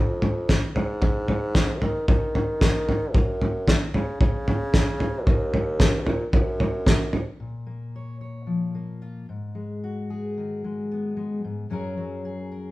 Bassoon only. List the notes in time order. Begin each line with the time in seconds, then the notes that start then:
Already playing: F2
0.75 G#2
1.82 D#3
2.08 D#3
3.15 F#2
3.94 C#3
4.21 C#3
5.27 D#2
6.06 A#2
6.33 F#2